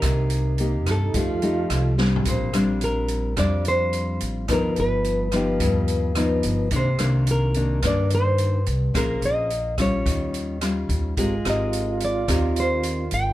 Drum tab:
HH |x--x--x--x--x--x--x-----|x--x--x--x--x--x--x--x--|x--x--x--x--x--x--x--x--|x--x--x--x--x--x--x--x--|
SD |r--------r--------r--o--|---r--------r-----------|r--------r--------r-----|---r--------r-----------|
FT |-----------------------o|------------------------|------------------------|------------------------|
BD |o--------o--o-----------|o-----------o-----------|o-----------o-----------|o-----------o-----------|

HH |x--x--x--x--x--x--x--x--|x--x--x--x--x--x--x--x--|
SD |r--------r--------r-----|---r--------r-----------|
FT |------------------------|------------------------|
BD |o--------o--o--------o--|o-----------o-----------|